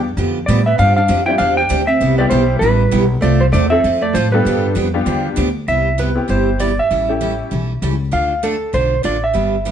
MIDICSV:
0, 0, Header, 1, 6, 480
1, 0, Start_track
1, 0, Key_signature, 0, "major"
1, 0, Tempo, 306279
1, 1227, Time_signature, 4, 2, 24, 8
1, 15224, End_track
2, 0, Start_track
2, 0, Title_t, "Electric slide guitar"
2, 0, Program_c, 0, 29
2, 724, Note_on_c, 0, 74, 85
2, 1030, Note_off_c, 0, 74, 0
2, 1036, Note_on_c, 0, 76, 83
2, 1230, Note_off_c, 0, 76, 0
2, 1237, Note_on_c, 0, 77, 94
2, 1493, Note_off_c, 0, 77, 0
2, 1512, Note_on_c, 0, 77, 89
2, 1970, Note_off_c, 0, 77, 0
2, 1976, Note_on_c, 0, 79, 91
2, 2160, Note_off_c, 0, 79, 0
2, 2166, Note_on_c, 0, 77, 102
2, 2458, Note_off_c, 0, 77, 0
2, 2464, Note_on_c, 0, 79, 111
2, 2934, Note_on_c, 0, 76, 104
2, 2967, Note_off_c, 0, 79, 0
2, 3420, Note_off_c, 0, 76, 0
2, 3426, Note_on_c, 0, 74, 84
2, 3592, Note_off_c, 0, 74, 0
2, 3599, Note_on_c, 0, 72, 72
2, 4057, Note_off_c, 0, 72, 0
2, 4063, Note_on_c, 0, 71, 92
2, 4801, Note_off_c, 0, 71, 0
2, 5050, Note_on_c, 0, 74, 95
2, 5339, Note_on_c, 0, 72, 85
2, 5359, Note_off_c, 0, 74, 0
2, 5418, Note_off_c, 0, 72, 0
2, 5528, Note_on_c, 0, 74, 78
2, 5794, Note_off_c, 0, 74, 0
2, 5801, Note_on_c, 0, 76, 92
2, 6305, Note_on_c, 0, 74, 91
2, 6311, Note_off_c, 0, 76, 0
2, 6491, Note_on_c, 0, 72, 84
2, 6499, Note_off_c, 0, 74, 0
2, 6768, Note_off_c, 0, 72, 0
2, 6775, Note_on_c, 0, 71, 81
2, 7678, Note_off_c, 0, 71, 0
2, 8907, Note_on_c, 0, 76, 91
2, 9395, Note_off_c, 0, 76, 0
2, 9396, Note_on_c, 0, 71, 65
2, 9871, Note_off_c, 0, 71, 0
2, 9878, Note_on_c, 0, 72, 84
2, 10348, Note_on_c, 0, 74, 86
2, 10360, Note_off_c, 0, 72, 0
2, 10645, Note_off_c, 0, 74, 0
2, 10647, Note_on_c, 0, 76, 82
2, 12018, Note_off_c, 0, 76, 0
2, 12740, Note_on_c, 0, 77, 92
2, 13222, Note_on_c, 0, 69, 76
2, 13235, Note_off_c, 0, 77, 0
2, 13700, Note_on_c, 0, 72, 89
2, 13717, Note_off_c, 0, 69, 0
2, 14181, Note_off_c, 0, 72, 0
2, 14187, Note_on_c, 0, 74, 80
2, 14477, Note_on_c, 0, 76, 79
2, 14489, Note_off_c, 0, 74, 0
2, 15224, Note_off_c, 0, 76, 0
2, 15224, End_track
3, 0, Start_track
3, 0, Title_t, "Honky-tonk piano"
3, 0, Program_c, 1, 3
3, 2003, Note_on_c, 1, 60, 59
3, 2009, Note_on_c, 1, 55, 63
3, 2014, Note_on_c, 1, 65, 57
3, 2016, Note_on_c, 1, 62, 66
3, 2027, Note_on_c, 1, 67, 73
3, 2169, Note_off_c, 1, 60, 0
3, 2172, Note_off_c, 1, 55, 0
3, 2175, Note_off_c, 1, 65, 0
3, 2176, Note_off_c, 1, 62, 0
3, 2181, Note_off_c, 1, 67, 0
3, 3425, Note_on_c, 1, 55, 82
3, 3429, Note_on_c, 1, 59, 72
3, 3431, Note_on_c, 1, 60, 64
3, 3443, Note_on_c, 1, 64, 72
3, 3447, Note_on_c, 1, 67, 82
3, 4060, Note_off_c, 1, 55, 0
3, 4062, Note_off_c, 1, 59, 0
3, 4063, Note_off_c, 1, 60, 0
3, 4069, Note_off_c, 1, 64, 0
3, 4071, Note_off_c, 1, 67, 0
3, 5806, Note_on_c, 1, 53, 69
3, 5812, Note_on_c, 1, 57, 67
3, 5816, Note_on_c, 1, 60, 62
3, 5817, Note_on_c, 1, 65, 63
3, 5826, Note_on_c, 1, 69, 80
3, 5987, Note_off_c, 1, 53, 0
3, 5990, Note_off_c, 1, 57, 0
3, 5992, Note_off_c, 1, 60, 0
3, 5992, Note_off_c, 1, 65, 0
3, 5997, Note_off_c, 1, 69, 0
3, 6794, Note_on_c, 1, 55, 77
3, 6796, Note_on_c, 1, 59, 69
3, 6797, Note_on_c, 1, 62, 74
3, 6797, Note_on_c, 1, 65, 67
3, 6803, Note_on_c, 1, 69, 85
3, 7420, Note_off_c, 1, 55, 0
3, 7421, Note_off_c, 1, 59, 0
3, 7421, Note_off_c, 1, 62, 0
3, 7421, Note_off_c, 1, 65, 0
3, 7424, Note_off_c, 1, 69, 0
3, 7741, Note_on_c, 1, 55, 76
3, 7744, Note_on_c, 1, 59, 67
3, 7748, Note_on_c, 1, 65, 69
3, 7749, Note_on_c, 1, 62, 66
3, 7750, Note_on_c, 1, 67, 81
3, 8373, Note_off_c, 1, 55, 0
3, 8374, Note_off_c, 1, 59, 0
3, 8376, Note_off_c, 1, 65, 0
3, 8377, Note_off_c, 1, 62, 0
3, 8377, Note_off_c, 1, 67, 0
3, 9639, Note_on_c, 1, 59, 67
3, 9646, Note_on_c, 1, 60, 56
3, 9646, Note_on_c, 1, 64, 59
3, 9662, Note_on_c, 1, 67, 72
3, 10282, Note_off_c, 1, 59, 0
3, 10286, Note_off_c, 1, 60, 0
3, 10286, Note_off_c, 1, 64, 0
3, 10294, Note_off_c, 1, 67, 0
3, 11114, Note_on_c, 1, 57, 66
3, 11114, Note_on_c, 1, 61, 58
3, 11126, Note_on_c, 1, 64, 59
3, 11131, Note_on_c, 1, 67, 77
3, 11742, Note_off_c, 1, 57, 0
3, 11742, Note_off_c, 1, 61, 0
3, 11748, Note_off_c, 1, 64, 0
3, 11750, Note_off_c, 1, 67, 0
3, 15224, End_track
4, 0, Start_track
4, 0, Title_t, "Steel-string acoustic guitar"
4, 0, Program_c, 2, 25
4, 270, Note_on_c, 2, 50, 52
4, 279, Note_on_c, 2, 53, 57
4, 287, Note_on_c, 2, 59, 60
4, 290, Note_on_c, 2, 62, 56
4, 290, Note_on_c, 2, 67, 64
4, 583, Note_off_c, 2, 50, 0
4, 588, Note_off_c, 2, 53, 0
4, 591, Note_off_c, 2, 59, 0
4, 593, Note_off_c, 2, 62, 0
4, 593, Note_off_c, 2, 67, 0
4, 759, Note_on_c, 2, 50, 75
4, 761, Note_on_c, 2, 53, 86
4, 765, Note_on_c, 2, 62, 76
4, 770, Note_on_c, 2, 59, 86
4, 770, Note_on_c, 2, 67, 74
4, 926, Note_off_c, 2, 50, 0
4, 927, Note_off_c, 2, 53, 0
4, 929, Note_off_c, 2, 62, 0
4, 931, Note_off_c, 2, 59, 0
4, 931, Note_off_c, 2, 67, 0
4, 1233, Note_on_c, 2, 48, 45
4, 1235, Note_on_c, 2, 53, 55
4, 1239, Note_on_c, 2, 60, 55
4, 1242, Note_on_c, 2, 62, 62
4, 1245, Note_on_c, 2, 67, 54
4, 1544, Note_off_c, 2, 48, 0
4, 1546, Note_off_c, 2, 53, 0
4, 1548, Note_off_c, 2, 60, 0
4, 1549, Note_off_c, 2, 62, 0
4, 1551, Note_off_c, 2, 67, 0
4, 1695, Note_on_c, 2, 48, 65
4, 1701, Note_on_c, 2, 53, 77
4, 1705, Note_on_c, 2, 62, 74
4, 1706, Note_on_c, 2, 60, 72
4, 1716, Note_on_c, 2, 67, 74
4, 1873, Note_off_c, 2, 48, 0
4, 1876, Note_off_c, 2, 53, 0
4, 1879, Note_off_c, 2, 60, 0
4, 1879, Note_off_c, 2, 62, 0
4, 1884, Note_off_c, 2, 67, 0
4, 2167, Note_on_c, 2, 48, 53
4, 2175, Note_on_c, 2, 53, 50
4, 2178, Note_on_c, 2, 60, 59
4, 2179, Note_on_c, 2, 62, 53
4, 2189, Note_on_c, 2, 67, 52
4, 2491, Note_off_c, 2, 48, 0
4, 2495, Note_off_c, 2, 53, 0
4, 2497, Note_off_c, 2, 60, 0
4, 2497, Note_off_c, 2, 62, 0
4, 2502, Note_off_c, 2, 67, 0
4, 2648, Note_on_c, 2, 48, 69
4, 2661, Note_on_c, 2, 60, 75
4, 2662, Note_on_c, 2, 53, 82
4, 2663, Note_on_c, 2, 62, 87
4, 2675, Note_on_c, 2, 67, 84
4, 2830, Note_off_c, 2, 48, 0
4, 2836, Note_off_c, 2, 53, 0
4, 2836, Note_off_c, 2, 60, 0
4, 2837, Note_off_c, 2, 62, 0
4, 2843, Note_off_c, 2, 67, 0
4, 3142, Note_on_c, 2, 48, 56
4, 3147, Note_on_c, 2, 55, 53
4, 3149, Note_on_c, 2, 64, 59
4, 3151, Note_on_c, 2, 59, 58
4, 3154, Note_on_c, 2, 67, 57
4, 3458, Note_off_c, 2, 48, 0
4, 3461, Note_off_c, 2, 55, 0
4, 3461, Note_off_c, 2, 64, 0
4, 3463, Note_off_c, 2, 59, 0
4, 3464, Note_off_c, 2, 67, 0
4, 3613, Note_on_c, 2, 48, 67
4, 3614, Note_on_c, 2, 55, 67
4, 3623, Note_on_c, 2, 64, 72
4, 3626, Note_on_c, 2, 59, 70
4, 3632, Note_on_c, 2, 67, 72
4, 3791, Note_off_c, 2, 48, 0
4, 3792, Note_off_c, 2, 55, 0
4, 3796, Note_off_c, 2, 64, 0
4, 3798, Note_off_c, 2, 59, 0
4, 3801, Note_off_c, 2, 67, 0
4, 4103, Note_on_c, 2, 48, 56
4, 4109, Note_on_c, 2, 55, 58
4, 4118, Note_on_c, 2, 67, 62
4, 4119, Note_on_c, 2, 59, 56
4, 4119, Note_on_c, 2, 64, 58
4, 4417, Note_off_c, 2, 48, 0
4, 4420, Note_off_c, 2, 55, 0
4, 4425, Note_off_c, 2, 59, 0
4, 4425, Note_off_c, 2, 64, 0
4, 4425, Note_off_c, 2, 67, 0
4, 4567, Note_on_c, 2, 48, 77
4, 4570, Note_on_c, 2, 55, 72
4, 4577, Note_on_c, 2, 59, 77
4, 4579, Note_on_c, 2, 64, 79
4, 4582, Note_on_c, 2, 67, 81
4, 4747, Note_off_c, 2, 48, 0
4, 4749, Note_off_c, 2, 55, 0
4, 4752, Note_off_c, 2, 59, 0
4, 4753, Note_off_c, 2, 64, 0
4, 4754, Note_off_c, 2, 67, 0
4, 5046, Note_on_c, 2, 53, 57
4, 5049, Note_on_c, 2, 60, 54
4, 5063, Note_on_c, 2, 65, 61
4, 5065, Note_on_c, 2, 69, 58
4, 5367, Note_off_c, 2, 53, 0
4, 5369, Note_off_c, 2, 60, 0
4, 5376, Note_off_c, 2, 65, 0
4, 5377, Note_off_c, 2, 69, 0
4, 5541, Note_on_c, 2, 53, 71
4, 5547, Note_on_c, 2, 60, 65
4, 5556, Note_on_c, 2, 65, 68
4, 5556, Note_on_c, 2, 69, 77
4, 5713, Note_off_c, 2, 53, 0
4, 5716, Note_off_c, 2, 60, 0
4, 5720, Note_off_c, 2, 69, 0
4, 5721, Note_off_c, 2, 65, 0
4, 6022, Note_on_c, 2, 60, 55
4, 6023, Note_on_c, 2, 53, 46
4, 6030, Note_on_c, 2, 65, 57
4, 6034, Note_on_c, 2, 69, 58
4, 6334, Note_off_c, 2, 53, 0
4, 6334, Note_off_c, 2, 60, 0
4, 6338, Note_off_c, 2, 65, 0
4, 6340, Note_off_c, 2, 69, 0
4, 6500, Note_on_c, 2, 53, 80
4, 6515, Note_on_c, 2, 60, 84
4, 6522, Note_on_c, 2, 65, 80
4, 6523, Note_on_c, 2, 69, 85
4, 6671, Note_off_c, 2, 53, 0
4, 6678, Note_off_c, 2, 60, 0
4, 6682, Note_off_c, 2, 65, 0
4, 6682, Note_off_c, 2, 69, 0
4, 6994, Note_on_c, 2, 50, 57
4, 6999, Note_on_c, 2, 53, 58
4, 7001, Note_on_c, 2, 59, 60
4, 7003, Note_on_c, 2, 62, 60
4, 7003, Note_on_c, 2, 67, 61
4, 7299, Note_off_c, 2, 50, 0
4, 7301, Note_off_c, 2, 53, 0
4, 7303, Note_off_c, 2, 59, 0
4, 7303, Note_off_c, 2, 62, 0
4, 7304, Note_off_c, 2, 67, 0
4, 7444, Note_on_c, 2, 50, 66
4, 7453, Note_on_c, 2, 53, 63
4, 7465, Note_on_c, 2, 59, 67
4, 7467, Note_on_c, 2, 67, 74
4, 7470, Note_on_c, 2, 62, 72
4, 7622, Note_off_c, 2, 50, 0
4, 7626, Note_off_c, 2, 53, 0
4, 7632, Note_off_c, 2, 59, 0
4, 7633, Note_off_c, 2, 67, 0
4, 7635, Note_off_c, 2, 62, 0
4, 7929, Note_on_c, 2, 50, 50
4, 7933, Note_on_c, 2, 53, 55
4, 7940, Note_on_c, 2, 59, 53
4, 7942, Note_on_c, 2, 62, 63
4, 7948, Note_on_c, 2, 67, 51
4, 8246, Note_off_c, 2, 50, 0
4, 8248, Note_off_c, 2, 53, 0
4, 8251, Note_off_c, 2, 59, 0
4, 8252, Note_off_c, 2, 62, 0
4, 8255, Note_off_c, 2, 67, 0
4, 8400, Note_on_c, 2, 50, 71
4, 8403, Note_on_c, 2, 53, 80
4, 8410, Note_on_c, 2, 59, 77
4, 8413, Note_on_c, 2, 62, 81
4, 8421, Note_on_c, 2, 67, 79
4, 8579, Note_off_c, 2, 50, 0
4, 8581, Note_off_c, 2, 53, 0
4, 8584, Note_off_c, 2, 59, 0
4, 8586, Note_off_c, 2, 62, 0
4, 8590, Note_off_c, 2, 67, 0
4, 8897, Note_on_c, 2, 48, 50
4, 8899, Note_on_c, 2, 55, 49
4, 8908, Note_on_c, 2, 59, 52
4, 8909, Note_on_c, 2, 67, 49
4, 8913, Note_on_c, 2, 64, 53
4, 9210, Note_off_c, 2, 48, 0
4, 9210, Note_off_c, 2, 55, 0
4, 9215, Note_off_c, 2, 59, 0
4, 9215, Note_off_c, 2, 67, 0
4, 9218, Note_off_c, 2, 64, 0
4, 9371, Note_on_c, 2, 48, 61
4, 9372, Note_on_c, 2, 55, 67
4, 9382, Note_on_c, 2, 64, 71
4, 9385, Note_on_c, 2, 59, 69
4, 9390, Note_on_c, 2, 67, 66
4, 9545, Note_off_c, 2, 48, 0
4, 9545, Note_off_c, 2, 55, 0
4, 9551, Note_off_c, 2, 64, 0
4, 9552, Note_off_c, 2, 59, 0
4, 9554, Note_off_c, 2, 67, 0
4, 9839, Note_on_c, 2, 48, 47
4, 9848, Note_on_c, 2, 55, 45
4, 9860, Note_on_c, 2, 67, 51
4, 9862, Note_on_c, 2, 59, 52
4, 9863, Note_on_c, 2, 64, 54
4, 10161, Note_off_c, 2, 48, 0
4, 10165, Note_off_c, 2, 55, 0
4, 10172, Note_off_c, 2, 59, 0
4, 10172, Note_off_c, 2, 67, 0
4, 10173, Note_off_c, 2, 64, 0
4, 10335, Note_on_c, 2, 48, 68
4, 10339, Note_on_c, 2, 55, 72
4, 10345, Note_on_c, 2, 59, 76
4, 10346, Note_on_c, 2, 64, 70
4, 10350, Note_on_c, 2, 67, 84
4, 10507, Note_off_c, 2, 48, 0
4, 10509, Note_off_c, 2, 55, 0
4, 10512, Note_off_c, 2, 59, 0
4, 10513, Note_off_c, 2, 64, 0
4, 10515, Note_off_c, 2, 67, 0
4, 10824, Note_on_c, 2, 52, 50
4, 10824, Note_on_c, 2, 55, 54
4, 10831, Note_on_c, 2, 61, 48
4, 10838, Note_on_c, 2, 69, 53
4, 10840, Note_on_c, 2, 64, 52
4, 11134, Note_off_c, 2, 52, 0
4, 11134, Note_off_c, 2, 55, 0
4, 11138, Note_off_c, 2, 61, 0
4, 11141, Note_off_c, 2, 69, 0
4, 11142, Note_off_c, 2, 64, 0
4, 11294, Note_on_c, 2, 52, 56
4, 11296, Note_on_c, 2, 55, 68
4, 11297, Note_on_c, 2, 61, 67
4, 11304, Note_on_c, 2, 64, 66
4, 11308, Note_on_c, 2, 69, 68
4, 11468, Note_off_c, 2, 52, 0
4, 11469, Note_off_c, 2, 55, 0
4, 11469, Note_off_c, 2, 61, 0
4, 11473, Note_off_c, 2, 64, 0
4, 11475, Note_off_c, 2, 69, 0
4, 11768, Note_on_c, 2, 52, 45
4, 11770, Note_on_c, 2, 55, 53
4, 11778, Note_on_c, 2, 61, 50
4, 11781, Note_on_c, 2, 64, 49
4, 11795, Note_on_c, 2, 69, 52
4, 12087, Note_off_c, 2, 52, 0
4, 12088, Note_off_c, 2, 55, 0
4, 12092, Note_off_c, 2, 61, 0
4, 12094, Note_off_c, 2, 64, 0
4, 12101, Note_off_c, 2, 69, 0
4, 12259, Note_on_c, 2, 52, 65
4, 12262, Note_on_c, 2, 55, 72
4, 12268, Note_on_c, 2, 61, 70
4, 12277, Note_on_c, 2, 64, 77
4, 12278, Note_on_c, 2, 69, 70
4, 12431, Note_off_c, 2, 52, 0
4, 12433, Note_off_c, 2, 55, 0
4, 12436, Note_off_c, 2, 61, 0
4, 12440, Note_off_c, 2, 64, 0
4, 12441, Note_off_c, 2, 69, 0
4, 12717, Note_on_c, 2, 50, 48
4, 12720, Note_on_c, 2, 57, 49
4, 12723, Note_on_c, 2, 62, 53
4, 12730, Note_on_c, 2, 65, 56
4, 12732, Note_on_c, 2, 69, 60
4, 13043, Note_off_c, 2, 50, 0
4, 13045, Note_off_c, 2, 57, 0
4, 13046, Note_off_c, 2, 62, 0
4, 13049, Note_off_c, 2, 65, 0
4, 13051, Note_off_c, 2, 69, 0
4, 13209, Note_on_c, 2, 57, 68
4, 13214, Note_on_c, 2, 50, 59
4, 13217, Note_on_c, 2, 62, 72
4, 13221, Note_on_c, 2, 65, 68
4, 13223, Note_on_c, 2, 69, 73
4, 13387, Note_off_c, 2, 57, 0
4, 13390, Note_off_c, 2, 50, 0
4, 13392, Note_off_c, 2, 62, 0
4, 13393, Note_off_c, 2, 65, 0
4, 13394, Note_off_c, 2, 69, 0
4, 13679, Note_on_c, 2, 50, 54
4, 13693, Note_on_c, 2, 57, 52
4, 13696, Note_on_c, 2, 62, 46
4, 13696, Note_on_c, 2, 65, 52
4, 13699, Note_on_c, 2, 69, 57
4, 14006, Note_off_c, 2, 50, 0
4, 14012, Note_off_c, 2, 57, 0
4, 14014, Note_off_c, 2, 62, 0
4, 14014, Note_off_c, 2, 65, 0
4, 14016, Note_off_c, 2, 69, 0
4, 14154, Note_on_c, 2, 50, 64
4, 14164, Note_on_c, 2, 57, 67
4, 14165, Note_on_c, 2, 62, 72
4, 14172, Note_on_c, 2, 65, 66
4, 14178, Note_on_c, 2, 69, 79
4, 14342, Note_off_c, 2, 50, 0
4, 14346, Note_off_c, 2, 57, 0
4, 14347, Note_off_c, 2, 62, 0
4, 14350, Note_off_c, 2, 65, 0
4, 14353, Note_off_c, 2, 69, 0
4, 14629, Note_on_c, 2, 50, 48
4, 14634, Note_on_c, 2, 55, 53
4, 14644, Note_on_c, 2, 59, 54
4, 14645, Note_on_c, 2, 62, 52
4, 14647, Note_on_c, 2, 67, 54
4, 14962, Note_off_c, 2, 50, 0
4, 14964, Note_off_c, 2, 55, 0
4, 14969, Note_off_c, 2, 59, 0
4, 14970, Note_off_c, 2, 62, 0
4, 14971, Note_off_c, 2, 67, 0
4, 15127, Note_on_c, 2, 50, 60
4, 15136, Note_on_c, 2, 55, 58
4, 15136, Note_on_c, 2, 59, 61
4, 15141, Note_on_c, 2, 67, 66
4, 15148, Note_on_c, 2, 62, 65
4, 15224, Note_off_c, 2, 50, 0
4, 15224, Note_off_c, 2, 55, 0
4, 15224, Note_off_c, 2, 59, 0
4, 15224, Note_off_c, 2, 62, 0
4, 15224, Note_off_c, 2, 67, 0
4, 15224, End_track
5, 0, Start_track
5, 0, Title_t, "Hollow-body jazz guitar"
5, 0, Program_c, 3, 26
5, 759, Note_on_c, 3, 55, 69
5, 1028, Note_off_c, 3, 55, 0
5, 1052, Note_on_c, 3, 59, 79
5, 1220, Note_off_c, 3, 59, 0
5, 1223, Note_on_c, 3, 62, 80
5, 1499, Note_off_c, 3, 62, 0
5, 1530, Note_on_c, 3, 62, 83
5, 1966, Note_off_c, 3, 62, 0
5, 1972, Note_on_c, 3, 64, 82
5, 2156, Note_off_c, 3, 64, 0
5, 2162, Note_on_c, 3, 62, 82
5, 2448, Note_off_c, 3, 62, 0
5, 2467, Note_on_c, 3, 62, 81
5, 2948, Note_on_c, 3, 60, 83
5, 2954, Note_off_c, 3, 62, 0
5, 3400, Note_off_c, 3, 60, 0
5, 3416, Note_on_c, 3, 59, 73
5, 3594, Note_off_c, 3, 59, 0
5, 3594, Note_on_c, 3, 55, 77
5, 4077, Note_off_c, 3, 55, 0
5, 4096, Note_on_c, 3, 55, 74
5, 4819, Note_off_c, 3, 55, 0
5, 5029, Note_on_c, 3, 57, 76
5, 5318, Note_off_c, 3, 57, 0
5, 5332, Note_on_c, 3, 55, 63
5, 5410, Note_off_c, 3, 55, 0
5, 5517, Note_on_c, 3, 57, 76
5, 5793, Note_off_c, 3, 57, 0
5, 5799, Note_on_c, 3, 60, 81
5, 6261, Note_off_c, 3, 60, 0
5, 6291, Note_on_c, 3, 57, 76
5, 6473, Note_off_c, 3, 57, 0
5, 6478, Note_on_c, 3, 53, 68
5, 6757, Note_off_c, 3, 53, 0
5, 6763, Note_on_c, 3, 55, 65
5, 7673, Note_off_c, 3, 55, 0
5, 15224, End_track
6, 0, Start_track
6, 0, Title_t, "Upright bass"
6, 0, Program_c, 4, 32
6, 0, Note_on_c, 4, 40, 98
6, 256, Note_off_c, 4, 40, 0
6, 264, Note_on_c, 4, 41, 91
6, 732, Note_off_c, 4, 41, 0
6, 754, Note_on_c, 4, 45, 100
6, 1216, Note_off_c, 4, 45, 0
6, 1233, Note_on_c, 4, 43, 80
6, 1696, Note_off_c, 4, 43, 0
6, 1708, Note_on_c, 4, 41, 89
6, 2173, Note_off_c, 4, 41, 0
6, 2183, Note_on_c, 4, 40, 86
6, 2650, Note_off_c, 4, 40, 0
6, 2668, Note_on_c, 4, 38, 88
6, 3132, Note_off_c, 4, 38, 0
6, 3142, Note_on_c, 4, 36, 74
6, 3609, Note_off_c, 4, 36, 0
6, 3622, Note_on_c, 4, 35, 96
6, 4083, Note_off_c, 4, 35, 0
6, 4093, Note_on_c, 4, 33, 82
6, 4563, Note_off_c, 4, 33, 0
6, 4577, Note_on_c, 4, 35, 87
6, 5044, Note_off_c, 4, 35, 0
6, 5052, Note_on_c, 4, 36, 81
6, 5521, Note_off_c, 4, 36, 0
6, 5536, Note_on_c, 4, 40, 100
6, 6003, Note_off_c, 4, 40, 0
6, 6017, Note_on_c, 4, 41, 83
6, 6482, Note_off_c, 4, 41, 0
6, 6495, Note_on_c, 4, 45, 96
6, 6961, Note_off_c, 4, 45, 0
6, 6976, Note_on_c, 4, 43, 86
6, 7441, Note_off_c, 4, 43, 0
6, 7457, Note_on_c, 4, 41, 90
6, 7921, Note_off_c, 4, 41, 0
6, 7930, Note_on_c, 4, 40, 88
6, 8397, Note_off_c, 4, 40, 0
6, 8416, Note_on_c, 4, 38, 91
6, 8880, Note_off_c, 4, 38, 0
6, 8899, Note_on_c, 4, 36, 71
6, 9665, Note_off_c, 4, 36, 0
6, 9860, Note_on_c, 4, 31, 82
6, 10626, Note_off_c, 4, 31, 0
6, 10824, Note_on_c, 4, 33, 77
6, 11590, Note_off_c, 4, 33, 0
6, 11780, Note_on_c, 4, 35, 73
6, 12187, Note_off_c, 4, 35, 0
6, 12255, Note_on_c, 4, 37, 84
6, 12665, Note_off_c, 4, 37, 0
6, 12742, Note_on_c, 4, 38, 72
6, 13511, Note_off_c, 4, 38, 0
6, 13690, Note_on_c, 4, 35, 82
6, 14104, Note_off_c, 4, 35, 0
6, 14180, Note_on_c, 4, 33, 75
6, 14590, Note_off_c, 4, 33, 0
6, 14654, Note_on_c, 4, 31, 76
6, 15224, Note_off_c, 4, 31, 0
6, 15224, End_track
0, 0, End_of_file